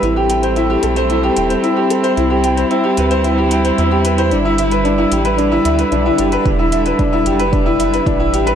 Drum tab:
HH |x-xxx-xxx-xxx-xx|x-xxx-xxx-xxx-xx|x-xxx-xxx-xxx-xx|x-xxx-xxx-xxx-xx|
T2 |----------------|----------------|----------------|--o------------o|
BD |----------------|----------------|----------------|o---o---o---o---|